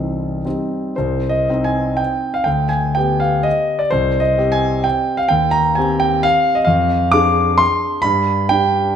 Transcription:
0.00 0.47 C1 soft
0.00 0.47 C2 soft
0.00 0.41 C4 soft
0.00 0.41 D#4 soft
0.00 0.44 C5 soft
0.45 0.94 G3 soft
0.45 0.95 C4 soft
0.45 0.95 D#4 soft
0.96 1.48 C2 soft
0.96 1.31 C5 medium
1.29 1.66 D#5 medium
1.50 2.43 C4 soft
1.50 2.43 D#4 soft
1.64 1.99 G#5 medium
1.97 2.34 G5 medium
2.34 2.46 F5 medium
2.44 2.94 D2 medium
2.44 2.69 G5 medium
2.69 2.95 G#5 medium
2.95 3.88 B3 soft
2.95 3.88 G4 soft
2.95 3.21 G5 medium
3.20 3.45 F5 medium
3.43 3.79 D#5 medium
3.79 3.91 D5 medium
3.91 4.38 C2 medium
3.91 4.22 C5 medium
4.20 4.53 D#5 medium
4.38 5.26 C4 soft
4.38 5.26 G4 medium
4.52 4.84 G#5 medium
4.84 5.18 G5 medium
5.17 5.30 F5 medium
5.29 5.76 D#2 medium
5.29 5.52 G5 medium
5.51 5.76 A#5 medium
5.75 6.64 C4 soft
5.75 6.64 G4 medium
5.75 6.00 G#5 medium
6.00 6.23 G5 medium
6.23 6.56 F5 loud
6.55 6.67 D#5 medium
6.65 7.12 F2 medium
6.65 7.12 F5 medium
7.12 8.00 D4 medium
7.12 8.00 G#4 medium
7.12 7.59 D6 loud
7.58 8.03 C6 loud
8.02 8.50 G2 medium
8.02 8.50 B5 loud
8.49 8.96 D4 medium
8.49 8.96 G4 soft
8.49 8.96 G5 loud

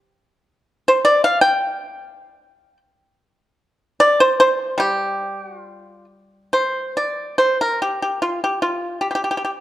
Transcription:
0.88 1.04 C5 medium
1.05 1.22 D5 medium
1.24 1.41 F5 medium
1.41 2.77 G5 loud
4.00 4.19 D5 loud
4.20 4.39 C5 loud
4.40 4.78 C5 loud
4.78 7.34 G3 medium
4.78 5.44 G4 medium
5.44 5.59 F#4 medium
5.59 6.04 F4 medium
6.53 6.91 C5 medium
6.97 7.35 D5 medium
7.38 7.57 C5 medium
7.61 7.78 A#4 medium
7.82 7.99 G4 medium
8.02 8.19 G4 medium
8.22 8.39 F4 medium
8.44 8.60 G4 medium
8.62 8.98 F4 medium
9.01 9.07 G4 medium
9.11 9.14 G4 soft
9.15 9.21 G4 medium
9.24 9.29 G4 soft
9.31 9.36 G4 medium
9.37 9.43 G4 soft
9.45 9.50 G4 soft

